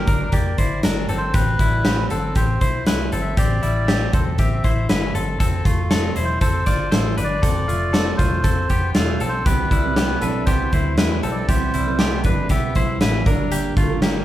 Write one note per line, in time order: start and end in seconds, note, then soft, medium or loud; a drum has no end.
0.00 0.29 A#4 medium
0.07 0.29 G1 medium
0.07 0.34 D4 soft
0.07 0.33 A#4 medium
0.07 kick medium
0.07 closed hi-hat medium
0.32 0.54 F1 medium
0.32 0.59 A#3 medium
0.32 0.58 G4 medium
0.32 0.80 D5 medium
0.32 kick medium
0.32 closed hi-hat medium
0.58 0.80 G1 medium
0.58 0.84 E4 medium
0.58 0.84 C5 medium
0.58 kick medium
0.58 closed hi-hat medium
0.83 1.05 G1 medium
0.83 1.10 D4 medium
0.83 1.09 A#4 medium
0.83 snare loud
0.83 closed hi-hat medium
1.09 1.31 G1 medium
1.09 1.34 C4 medium
1.09 1.34 A4 medium
1.09 closed hi-hat medium
1.17 1.35 C5 medium
1.34 1.56 A1 medium
1.34 1.60 C4 medium
1.34 1.60 G4 medium
1.34 2.06 B4 loud
1.34 kick loud
1.34 closed hi-hat loud
1.59 2.03 A1 loud
1.59 1.86 G3 medium
1.59 1.85 E4 medium
1.59 kick medium
1.59 closed hi-hat medium
1.85 2.10 C4 medium
1.85 2.10 G4 medium
1.85 snare loud
1.85 closed hi-hat medium
2.10 2.32 G1 medium
2.10 2.36 C4 medium
2.10 2.36 A4 medium
2.10 2.37 A4 medium
2.10 closed hi-hat medium
2.35 2.57 A1 medium
2.35 2.62 C4 medium
2.35 2.61 G4 medium
2.35 2.84 C5 medium
2.35 kick medium
2.35 closed hi-hat medium
2.61 2.83 B1 medium
2.61 2.87 E4 soft
2.61 2.87 C5 medium
2.61 kick medium
2.61 closed hi-hat medium
2.86 3.08 C2 medium
2.86 3.13 E4 medium
2.86 3.12 B4 medium
2.86 snare loud
2.86 closed hi-hat medium
3.11 3.33 G1 medium
3.11 3.37 C4 soft
3.11 3.38 A4 medium
3.11 closed hi-hat medium
3.22 3.37 E5 medium
3.37 3.59 A1 medium
3.37 3.63 C4 medium
3.37 3.63 G4 medium
3.37 4.16 D5 loud
3.37 kick loud
3.37 closed hi-hat loud
3.63 4.06 A1 medium
3.63 3.88 G3 soft
3.63 3.88 E4 medium
3.63 closed hi-hat medium
3.88 4.13 C4 medium
3.88 4.13 G4 medium
3.88 snare medium
3.88 closed hi-hat medium
4.13 4.35 E1 medium
4.13 4.39 C4 soft
4.13 4.39 A4 medium
4.13 4.24 C5 medium
4.13 kick loud
4.13 closed hi-hat medium
4.38 4.60 A1 medium
4.38 4.65 C4 medium
4.38 4.64 G4 medium
4.38 4.86 E5 medium
4.38 kick medium
4.38 closed hi-hat medium
4.64 4.86 A1 medium
4.64 4.89 E4 medium
4.64 4.89 C5 medium
4.64 kick medium
4.64 closed hi-hat medium
4.89 5.15 E4 medium
4.89 5.14 B4 medium
4.89 snare loud
4.89 closed hi-hat medium
5.15 5.36 G1 medium
5.15 5.40 C4 soft
5.15 5.39 A4 medium
5.15 closed hi-hat medium
5.40 5.62 F1 medium
5.40 5.66 C4 medium
5.40 5.65 A4 medium
5.40 kick medium
5.40 closed hi-hat loud
5.65 6.08 F1 medium
5.65 5.91 A3 medium
5.65 5.91 F4 medium
5.65 kick medium
5.65 closed hi-hat medium
5.91 6.17 C4 medium
5.91 6.16 A4 medium
5.91 snare loud
5.91 closed hi-hat medium
6.16 6.38 E1 medium
6.16 6.42 E4 soft
6.16 6.41 C5 medium
6.16 closed hi-hat medium
6.25 6.39 C5 medium
6.41 6.63 F1 medium
6.41 6.67 C4 medium
6.41 6.66 A4 medium
6.41 6.93 C5 medium
6.41 kick medium
6.41 closed hi-hat medium
6.66 6.88 G1 medium
6.66 6.92 F4 medium
6.66 6.91 D5 medium
6.66 kick medium
6.66 snare soft
6.66 closed hi-hat medium
6.91 7.14 A1 medium
6.91 7.18 E4 soft
6.91 7.15 A4 medium
6.91 7.17 C5 medium
6.91 snare loud
6.91 closed hi-hat medium
7.17 7.39 G1 medium
7.17 7.43 D4 medium
7.17 7.43 B4 medium
7.17 closed hi-hat medium
7.24 8.14 D5 loud
7.42 7.65 F1 loud
7.42 7.68 C4 medium
7.42 7.68 A4 medium
7.42 kick loud
7.42 closed hi-hat loud
7.68 8.11 F1 medium
7.68 7.94 A3 soft
7.68 7.94 F4 medium
7.68 closed hi-hat medium
7.93 8.19 C4 medium
7.93 8.19 A4 medium
7.93 snare loud
7.93 closed hi-hat medium
8.17 8.41 E1 medium
8.17 8.45 A3 soft
8.17 8.44 F4 medium
8.17 8.90 C5 medium
8.17 kick medium
8.17 closed hi-hat medium
8.44 8.66 F1 medium
8.44 8.70 C4 medium
8.44 8.70 A4 medium
8.44 kick medium
8.44 closed hi-hat medium
8.69 8.91 F1 medium
8.69 8.95 B3 medium
8.69 8.95 G4 medium
8.69 kick medium
8.69 closed hi-hat medium
8.95 9.17 E1 medium
8.95 9.21 A3 medium
8.95 9.21 F4 medium
8.95 snare loud
8.95 closed hi-hat medium
9.20 9.42 B1 medium
9.20 9.47 C4 medium
9.20 9.46 A4 medium
9.20 closed hi-hat medium
9.28 9.46 C5 medium
9.45 9.67 C2 medium
9.45 9.84 C3 medium
9.45 9.84 E3 medium
9.45 9.84 G3 medium
9.45 9.72 B3 medium
9.45 9.84 C4 medium
9.45 9.83 E4 medium
9.45 9.71 G4 medium
9.45 10.24 B4 loud
9.45 9.82 B4 medium
9.45 kick loud
9.45 closed hi-hat loud
9.71 10.14 C2 medium
9.71 9.97 G3 medium
9.71 9.97 E4 medium
9.71 kick medium
9.71 closed hi-hat medium
9.84 9.95 G3 soft
9.84 9.96 C4 soft
9.84 9.96 E4 soft
9.84 9.96 B4 soft
9.96 10.21 G3 medium
9.96 10.23 B3 medium
9.96 10.21 C4 medium
9.96 10.22 E4 soft
9.96 10.22 G4 medium
9.96 10.23 B4 medium
9.96 snare medium
9.96 closed hi-hat medium
10.21 10.44 B1 medium
10.21 10.72 G3 medium
10.21 10.72 C4 medium
10.21 10.48 D4 medium
10.21 10.73 E4 medium
10.21 10.45 A4 medium
10.21 10.47 B4 medium
10.21 10.74 B4 medium
10.21 closed hi-hat medium
10.46 10.69 C2 medium
10.46 10.73 B3 medium
10.46 10.73 G4 medium
10.46 10.94 C5 medium
10.46 kick medium
10.46 closed hi-hat medium
10.72 10.98 D2 medium
10.72 10.97 G3 medium
10.72 10.98 C4 medium
10.72 10.99 E4 medium
10.72 10.98 E4 soft
10.72 10.99 B4 medium
10.72 10.98 C5 medium
10.72 kick medium
10.72 closed hi-hat medium
10.97 11.19 E2 medium
10.97 11.49 G3 medium
10.97 11.48 C4 soft
10.97 11.24 E4 medium
10.97 11.48 E4 medium
10.97 11.23 B4 medium
10.97 11.50 B4 medium
10.97 snare loud
10.97 closed hi-hat medium
11.23 11.45 B1 medium
11.23 11.49 C4 soft
11.23 11.49 A4 medium
11.23 closed hi-hat medium
11.31 11.49 D5 medium
11.48 11.70 C2 medium
11.48 11.87 C3 medium
11.48 11.87 E3 medium
11.48 11.87 G3 medium
11.48 11.74 B3 medium
11.48 11.87 C4 medium
11.48 11.87 E4 medium
11.48 11.74 G4 medium
11.48 12.21 C5 medium
11.48 kick loud
11.48 closed hi-hat medium
11.74 12.26 C2 medium
11.74 12.00 G3 medium
11.74 11.99 E4 medium
11.74 closed hi-hat medium
11.87 11.99 G3 soft
11.87 12.00 C4 medium
11.87 12.00 E4 soft
11.87 12.00 B4 soft
11.99 12.24 G3 soft
11.99 12.25 B3 medium
11.99 12.24 C4 medium
11.99 12.25 E4 medium
11.99 12.25 G4 medium
11.99 12.25 B4 soft
11.99 snare loud
11.99 closed hi-hat medium
12.24 12.46 G1 medium
12.24 12.76 G3 medium
12.24 12.75 C4 medium
12.24 12.51 D4 medium
12.24 12.76 E4 medium
12.24 12.48 B4 medium
12.24 12.50 B4 medium
12.24 12.76 B4 medium
12.24 kick medium
12.24 closed hi-hat medium
12.49 12.72 B1 medium
12.49 12.76 B3 medium
12.49 12.76 G4 medium
12.49 12.97 E5 medium
12.49 kick medium
12.49 closed hi-hat medium
12.75 12.97 B1 medium
12.75 13.00 G3 medium
12.75 13.01 C4 medium
12.75 13.01 E4 medium
12.75 13.02 B4 medium
12.75 13.01 C5 medium
12.75 kick medium
12.75 closed hi-hat medium
13.01 13.22 A1 medium
13.01 13.25 G3 medium
13.01 13.26 C4 medium
13.01 13.27 E4 medium
13.01 13.26 E4 medium
13.01 13.26 B4 medium
13.01 snare loud
13.01 closed hi-hat medium
13.26 13.69 G1 medium
13.26 13.94 G3 medium
13.26 13.90 D4 medium
13.26 13.52 D4 medium
13.26 13.89 F4 medium
13.26 13.52 A#4 medium
13.26 13.88 A#4 medium
13.26 kick medium
13.26 closed hi-hat medium
13.52 13.77 A#3 medium
13.52 13.76 G4 medium
13.52 closed hi-hat loud
13.77 14.20 G1 loud
13.77 14.03 A3 medium
13.77 14.02 F4 medium
13.77 kick medium
13.77 closed hi-hat medium
13.90 14.02 D4 soft
13.90 14.02 F4 soft
13.90 14.02 A#4 medium
14.02 14.25 G3 medium
14.02 14.25 A#3 medium
14.02 14.25 D4 medium
14.02 14.25 F4 medium
14.02 14.25 G4 medium
14.02 14.25 A#4 medium
14.02 snare loud
14.02 closed hi-hat medium